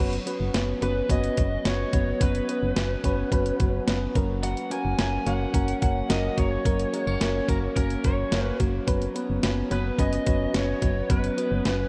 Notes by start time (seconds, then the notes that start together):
0.00 F#1 F#3 B3 C#4 F#4 B4
0.13 closed hi-hat
0.26 B3 C#4 F#4 B4, closed hi-hat
0.40 F#1
0.54 F#1 B3 C#4 F#4 B4, snare, closed hi-hat
0.81 F#1 B3 C#4 F#4 B4, closed hi-hat
1.09 F#1 B3 C#4 F#4 B4 D#5, kick, closed hi-hat
1.24 closed hi-hat
1.37 F#1 F#3 B3 C#4 F#4 B4, kick, closed hi-hat
1.65 F#1 B3 C#4 F#4 B4 C#5, snare, closed hi-hat
1.93 F#1 F#3 B3 C#4 F#4 B4, kick, closed hi-hat
2.20 F#1 F#3 B3 C#4 F#4 B4, kick, closed hi-hat
2.35 closed hi-hat
2.48 B3 C#4 F#4 B4, closed hi-hat
2.62 F#1
2.76 F#1 B3 C#4 F#4 B4, snare, closed hi-hat
3.04 F#1 B3 C#4 F#4 B4, kick, closed hi-hat
3.31 F#1 B3 C#4 F#4 B4, kick, closed hi-hat
3.46 closed hi-hat
3.59 F#1 F#3 B3 C#4 F#4 B4, kick, closed hi-hat
3.87 F#1 B3 C#4 F#4 B4, snare, closed hi-hat
4.15 F#1 F#3 A#3 C#4 F#4 A#4, kick, closed hi-hat
4.43 F#3 F#5, closed hi-hat
4.57 closed hi-hat
4.70 A#3 C#4 F#4 A#4 G#5, closed hi-hat
4.85 F#1
4.98 F#1 A#3 C#4 F#4 A#4 G#5, snare, closed hi-hat
5.26 F#1 A#3 C#4 F#4 C#5 F#5, closed hi-hat
5.54 F#1 A#3 C#4 F#4 A#4, kick, closed hi-hat
5.68 closed hi-hat
5.81 F#1 F#3 A#3 C#4 F#4 A#4 F#5, kick, closed hi-hat
6.09 F#1 A#3 C#4 F#4 A#4 D#5, snare, closed hi-hat
6.37 F#1 F#3 A#3 C#4 F#4 A#4 C#5, kick, closed hi-hat
6.65 F#1 F#3 A#3 C#4 F#4 A#4, kick, closed hi-hat
6.80 closed hi-hat
6.93 G#3 A#3 C#4 F#4 A#4, closed hi-hat
7.07 F#1 A#3 C#5
7.21 F#1 A#3 C#4 F#4 A#4, snare, closed hi-hat
7.48 F#1 A#3 C#4 F#4 A#4, kick, closed hi-hat
7.76 F#1 A#3 C#4 F#4 A#4, kick, closed hi-hat
7.90 closed hi-hat
8.04 F#1 F#3 A#3 C#4 F#4 A#4 C#5, kick, closed hi-hat
8.31 F#1 A#3 C#4 F#4 C#5, snare, closed hi-hat
8.45 B4
8.59 F#1 F#3 A#3 C#4 F#4 A#4, kick, closed hi-hat
8.87 F#1 F#3 B3 C#4 F#4 B4, kick, closed hi-hat
9.02 closed hi-hat
9.15 B3 C#4 F#4 B4, closed hi-hat
9.29 F#1
9.43 F#1 B3 C#4 F#4 B4, snare, closed hi-hat
9.70 F#1 B3 C#4 F#4 B4, closed hi-hat
9.98 F#1 B3 C#4 F#4 B4 D#5, kick, closed hi-hat
10.13 closed hi-hat
10.26 F#1 F#3 B3 C#4 F#4 B4, kick, closed hi-hat
10.53 F#1 B3 C#4 F#4 B4 C#5, snare, closed hi-hat
10.81 F#1 F#3 B3 C#4 F#4 B4, kick, closed hi-hat
11.09 F#1 F#3 B3 C#4 F#4 B4, kick, closed hi-hat
11.24 closed hi-hat
11.37 B3 C#4 F#4 B4, closed hi-hat
11.51 F#1
11.65 F#1 B3 C#4 F#4 B4, snare, closed hi-hat